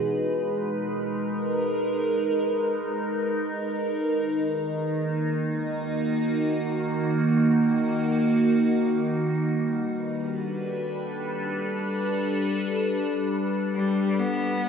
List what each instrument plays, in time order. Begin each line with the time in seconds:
Already playing: ambient pad G#3 D#4 G#4 B4
0.41 ambient pad A#4
4.03 ambient pad D#3
4.86 ambient pad A#3
5.61 ambient pad F#4
9.39 ambient pad G3
9.83 ambient pad B4
10.11 ambient pad D4
10.31 ambient pad A4
13.74 cello G3
14.18 cello B3
14.61 ambient pad E3